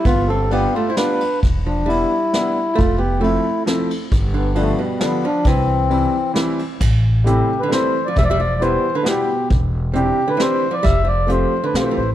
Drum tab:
CC |------|------|------|------|
RD |x-x-xx|x-x-x-|x-x-xx|x-x-x-|
HH |------|------|------|------|
SD |----o-|----o-|----o-|----o-|
BD |o-----|o-----|o-----|o-----|

CC |------|x-----|------|------|
RD |x-x-xx|------|------|------|
HH |------|--x-x-|x-x-x-|x-x-x-|
SD |----o-|----o-|----o-|----o-|
BD |o-----|o-----|o-----|o-----|

CC |------|
RD |------|
HH |x-x-x-|
SD |----o-|
BD |o-----|